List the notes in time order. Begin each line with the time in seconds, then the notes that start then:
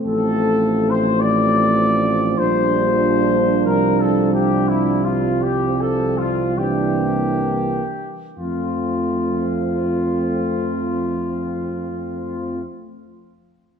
Already playing: A3 C4
0.06 A1 F3 A4
0.90 C5
1.20 D5
2.38 A#1 G3 D4 C5
3.65 C2 A#4
4.00 A4
4.33 G4
4.68 E4
5.04 C4 F4
5.42 G4
5.81 A4
6.18 F4
6.57 E3 A#3 D4 G4
8.38 F2 F3 A3 C4 F4